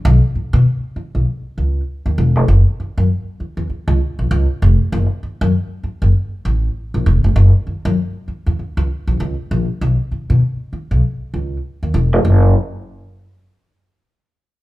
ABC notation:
X:1
M:4/4
L:1/16
Q:"Swing 16ths" 1/4=98
K:F#mix
V:1 name="Upright bass" clef=bass
B,,, z2 B,, z3 B,,, z2 C,,2 z D,, E,,, ^E,,, | F,,, z2 F,, z3 E,, z C,, z A,,, C,, z ^E,,, z | F,,, z2 F,, z3 F,,, z2 =A,,,2 z ^A,,, E,,, ^E,,, | F,,, z2 F,, z3 E,, z C,, z A,,, C,, z A,,, z |
B,,, z2 B,, z3 B,,, z2 C,,2 z D,, E,,, ^E,,, | F,,,2 z12 z2 |]